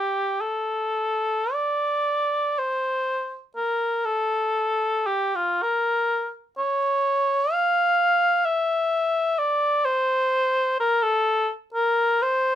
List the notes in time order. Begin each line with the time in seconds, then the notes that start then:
Already playing: G4
0.41 A4
1.53 D5
2.59 C5
3.56 A#4
4.05 A4
5.07 G4
5.35 F4
5.62 A#4
6.58 C#5
7.52 F5
8.45 E5
9.38 D5
9.85 C5
10.80 A#4
11.03 A4
11.74 A#4
12.23 C5